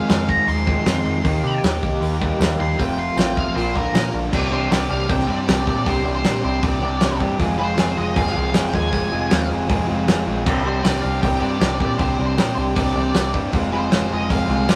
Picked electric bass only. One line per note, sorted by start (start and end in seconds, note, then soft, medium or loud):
0.10 0.39 F2 medium
0.48 0.77 D#2 loud
0.86 1.01 F2 loud
1.06 1.20 F2 medium
1.25 1.39 D#2 medium
1.43 1.58 C3 medium
1.63 1.78 D#2 medium
1.83 1.97 C2 medium
2.01 2.30 D#2 loud
2.40 2.55 D#2 loud
2.59 2.74 D#2 medium
2.79 3.08 F1 medium
3.17 3.46 A1 loud
3.55 3.84 A#1 medium
3.94 4.09 A#2 medium
4.13 4.28 A#1 medium
4.33 4.67 C2 medium
4.71 4.88 C2 medium
4.90 5.07 C2 medium
5.09 5.27 C2 medium
5.28 5.46 G2 medium
5.48 5.65 C2 loud
5.67 5.84 A#2 medium
5.86 6.03 C2 medium
6.06 6.23 C2 loud
6.25 6.42 A#2 medium
6.44 6.61 C2 medium
6.63 6.80 C2 medium
6.83 7.00 C2 loud
7.02 7.19 C2 loud
7.20 7.37 G2 medium
7.39 7.74 F1 medium
7.78 7.95 F1 medium
7.97 8.14 F1 medium
8.16 8.33 F1 loud
8.36 8.53 C2 medium
8.55 8.72 F1 loud
8.74 8.91 D#2 medium
8.93 9.10 F1 medium
9.12 9.29 F1 loud
9.31 9.48 D#2 medium
9.50 9.68 F1 medium
9.69 9.87 F1 medium
9.89 10.06 F1 loud
10.08 10.25 F1 loud
10.27 10.44 A#1 medium
10.46 10.81 C2 medium
10.85 11.02 C2 medium
11.03 11.21 C2 medium
11.23 11.40 C2 loud
11.41 11.59 G2 medium
11.61 11.78 C2 loud
11.80 11.97 A#2 medium
11.99 12.17 C2 medium
12.18 12.36 C2 medium
12.38 12.55 A#2 medium
12.57 12.74 C2 medium
12.76 12.94 C2 medium
12.95 13.12 C2 medium
13.14 13.32 C2 medium
13.34 13.51 G2 medium
13.53 13.87 F1 medium
13.91 14.09 F1 loud
14.11 14.28 F1 medium
14.30 14.47 F1 loud
14.49 14.66 C2 loud
14.67 14.75 F1 loud